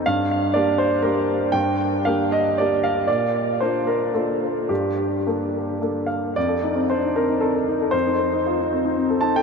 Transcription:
\new Staff \with { instrumentName = "Grand piano" } { \time 3/4 \key f \mixolydian \tempo 4 = 116 << { f''4 d''8 c''8 bes'4 | g''4 f''8 ees''8 d''8 f''8 | d''4 c''8 bes'8 a'4 | g'2~ g'8 f''8 |
d''4 c''8 bes'8 a'4 | c''2 r8 a''16 g''16 | } \\ { g,4 <bes d' g'>4 <bes d' g'>4 | g,4 <bes d' g'>4 <bes d' g'>4 | bes,4 <bes d' f'>4 <bes d' f'>4 | g,4 <bes d' a'>4 <bes d' a'>4 |
f,16 a'16 ees'16 c'16 d'16 ees'16 c'16 ees'16 c'16 a'16 ees'16 a'16 | f,16 ees'16 c'16 ees'16 f'16 ees'16 c'16 ees'16 c'16 a'16 ees'16 a'16 | } >> }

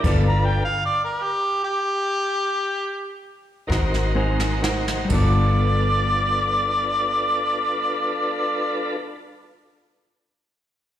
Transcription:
<<
  \new Staff \with { instrumentName = "Harmonica" } { \time 12/8 \key g \mixolydian \tempo 4. = 41 << { d''1~ d''4 r4 | d''1. | } \\ { r16 bes''16 g''16 f''16 d''16 bes'16 g'8 g'2 r2 | r1. | } >> }
  \new Staff \with { instrumentName = "Grand piano" } { \time 12/8 \key g \mixolydian <f' a' b' d''>8 r1 <ees' ges' bes' c''>8 <ees' ges' bes' c'' aes''>8 <ees' ges' bes' c'' ges''>8 | <d' f' a' b'>1. | }
  \new Staff \with { instrumentName = "Tonewheel organ" } { \time 12/8 \key g \mixolydian <d' f' a' b'>4 r2. r8 <ees' ges' bes' c''>4. | <d' f' a' b'>1. | }
  \new Staff \with { instrumentName = "Clean electric guitar" } { \time 12/8 \key g \mixolydian <g b f' a'>8 r1 <c' ges' bes'>8 <aes c' ges' bes'>8 r8 | <g b f' a'>1. | }
  \new Staff \with { instrumentName = "Fingered electric bass" } { \clef bass \time 12/8 \key g \mixolydian g,,4 r2. r8 aes,,4. | g,,1. | }
  \new DrumStaff \with { instrumentName = "Drums" } \drummode { \time 12/8 <cymc hh bd>4. r4. r4. <bd sn>16 sn8 sn16 sn16 sn16 | <cymc bd>4. r4. r4. r4. | }
>>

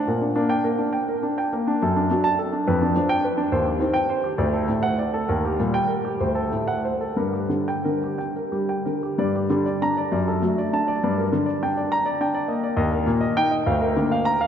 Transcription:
<<
  \new Staff \with { instrumentName = "Grand piano" } { \time 6/8 \key g \minor \tempo 4. = 68 bes'16 d'16 bes16 g''16 bes'16 d'16 g''16 bes'16 d'16 g''16 bes'16 d'16 | a'16 d'16 fis16 a''16 a'16 d'16 b'16 d'16 f16 g''16 b'16 d'16 | c''16 g'16 ees16 g''16 c''16 g'16 d''16 a'16 a,16 fis''16 d''16 a'16 | bes'16 g'16 bes,16 g''16 bes'16 g'16 c''16 a'16 a,16 fis''16 c''16 a'16 |
bes'16 g'16 d16 g''16 bes'16 g'16 g''16 bes'16 g'16 g''16 bes'16 g'16 | d''16 g'16 d16 d''16 bes''16 d''16 d''16 a'16 fis16 d''16 a''16 d''16 | d''16 bes'16 r16 d''16 g''16 d''16 bes''16 d''16 g''16 d''16 ees''16 d''16 | ees''16 bes'16 bes,16 ees''16 g''16 ees''16 f''16 bes'16 d16 f''16 bes''16 f''16 | }
  \new Staff \with { instrumentName = "Grand piano" } { \clef bass \time 6/8 \key g \minor bes,8 d'8 bes8 r4 bes8 | fis,8 d'8 r8 f,8 d'8 r8 | ees,8 c'8 r8 d,8 a8 r8 | ees,8 g8 r8 d,8 a8 r8 |
g,8 g8 d8 r8 g8 d8 | g,8 g8 d'8 fis,8 a8 d'8 | g,8 d8 d'8 r8 d'8 bes8 | ees,8 bes8 ees'8 d,8 bes8 r8 | }
>>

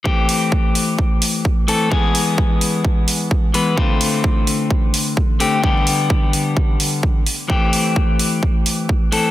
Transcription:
<<
  \new Staff \with { instrumentName = "Clean electric guitar" } { \time 4/4 \key a \minor \tempo 4 = 129 <e a c' g'>2.~ <e a c' g'>8 <e a c' a'>8 | <e gis b gis'>2.~ <e gis b gis'>8 <e gis b b'>8 | <d a c' f'>2.~ <d a c' f'>8 <d a c' g'>8 | <d g b g'>2.~ <d g b g'>8 r8 |
<e a c' g'>2.~ <e a c' g'>8 <e a c' a'>8 | }
  \new DrumStaff \with { instrumentName = "Drums" } \drummode { \time 4/4 bd8 hho8 bd8 hho8 bd8 hho8 bd8 hho8 | bd8 hho8 bd8 hho8 bd8 hho8 bd8 hho8 | bd8 hho8 bd8 hho8 bd8 hho8 bd8 hho8 | bd8 hho8 bd8 hho8 bd8 hho8 bd8 hho8 |
bd8 hho8 bd8 hho8 bd8 hho8 bd8 hho8 | }
>>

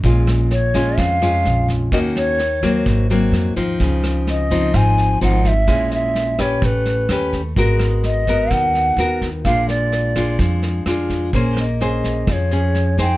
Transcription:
<<
  \new Staff \with { instrumentName = "Bansuri" } { \time 4/4 \key bes \phrygian \tempo 4 = 128 r4 des''4 f''4. r8 | ees''8 des''4. r2 | r4 ees''4 aes''4 ges''8 fes''8~ | fes''8 fes''4 des''8 b'4. r8 |
r4 ees''4 ges''4. r8 | f''8 d''4. r2 | \key bes \minor r8 ees''4. des''4. g''8 | }
  \new Staff \with { instrumentName = "Grand piano" } { \time 4/4 \key bes \phrygian r1 | r1 | r1 | r1 |
r1 | r1 | \key bes \minor r4 aes'2. | }
  \new Staff \with { instrumentName = "Nylon-string guitar" } { \time 4/4 \key bes \phrygian << { <aes des' f'>4 r8 <aes des' f'>4 <aes des' f'>4. | <bes des' ges'>4 r8 <ges bes c'>4 <ges bes c'>4 <f c' ees'>8~ | <f c' ees'>4. <f c' ees'>4. <f c' ees'>8 r8 | <aes des' fes'>4. <des' g' ces''>4. <cis' g' b'>8 r8 |
<ces' ges' bes'>4. <ces' ges' bes'>4. <ces' ges' bes'>8 r8 | <aes d' f'>4. <aes d' f'>4. <aes d' f'>4 | \key bes \minor <des' aes' c''>8 r8 <des' aes' c''>4. <des' aes'>4 <ees' aes' c''>8 | } \\ { bes,2 f,2 | ees2 aes,2 | des2 aes,2 | bes,2 a2 |
aes2 ees2 | bes,2 f2 | bes2 f2 | } >> }
  \new Staff \with { instrumentName = "Upright bass" } { \clef bass \time 4/4 \key bes \phrygian bes,,2 f,4 bes,,4 | ees,2 aes,,4 f,8 ees,8 | des,2 aes,,4 aes,,4 | bes,,2 a,,4 ees,4 |
aes,,2 ees,4 ees,4 | bes,,2 f,4 f,4 | \key bes \minor bes,,2 f,2 | }
  \new DrumStaff \with { instrumentName = "Drums" } \drummode { \time 4/4 <bd sn>8 <ss sn>8 sn8 <bd sn>8 <bd ss sn>8 sn8 sn8 <bd sn>8 | <bd ss sn>8 sn8 sn8 <bd ss sn>8 <bd sn>8 sn8 <ss sn>8 <bd sn>8 | <bd sn>8 <ss sn>8 sn8 <bd sn>8 <bd ss sn>8 sn8 sn8 <bd sn>8 | <bd ss sn>8 sn8 sn8 <bd ss sn>8 <bd sn>8 sn8 <ss sn>8 <bd sn>8 |
<bd sn>8 <ss sn>8 sn8 <bd sn>8 <bd ss sn>8 sn8 sn8 <bd sn>8 | <bd ss sn>8 sn8 sn8 <bd ss sn>8 <bd sn>8 sn8 <ss sn>8 <bd sn>8 | <bd sn>8 <ss sn>8 sn8 <bd sn>8 <bd ss sn>8 sn8 sn8 <bd sn>8 | }
>>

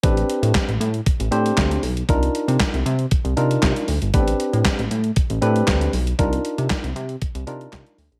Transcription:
<<
  \new Staff \with { instrumentName = "Tine electric piano" } { \time 4/4 \key c \lydian \tempo 4 = 117 <c' d' g' b'>4. r4 <c' d' g' c''>4 r8 | <d' ees' f' bes'>4. r4 <d' ees' f' bes'>4 r8 | <b c' d' g' b'>4. r4 <c' d' g' b'>4 r8 | <d' ees' f' bes'>4. r4 <d' ees' f' bes'>4 r8 | }
  \new Staff \with { instrumentName = "Analog synth bass" } { \clef bass \time 4/4 \key c \lydian a,,8 r16 a,16 r16 a,,16 a,8 r16 a,,16 a,8 d,8 b,,8 | c,8 r16 c16 r16 c,16 c8 r16 c,16 c8 c16 r16 d,16 g,,16 | a,,8 r16 a,16 r16 a,,16 a,8 r16 a,,16 a,8 d,8 b,,8 | c,8 r16 c16 r16 c,16 c8 r16 c,16 c8 c16 r16 d,16 bes,,16 | }
  \new DrumStaff \with { instrumentName = "Drums" } \drummode { \time 4/4 <hh bd>16 hh16 hh16 hh16 <hc hh bd sn>16 hh16 hh16 hh16 <hh bd>16 hh16 hh16 hh16 <hc hh bd sn>16 hh16 hho16 hh16 | <hh bd>16 hh16 hh16 hh16 <hc hh bd sn>16 hh16 hh16 hh16 <hh bd>16 hh16 hh16 hh16 <hc hh bd sn>16 hh16 hho16 hh16 | <hh bd>16 hh16 hh16 hh16 <hc hh bd sn>16 hh16 hh16 hh16 <hh bd>16 hh16 hh16 hh16 <hc hh bd sn>16 hh16 hho16 hh16 | <hh bd>16 hh16 hh16 hh16 <hc hh bd sn>16 hh16 hh16 hh16 <hh bd>16 hh16 hh16 hh16 <hc hh bd sn>16 hh16 hho16 hh16 | }
>>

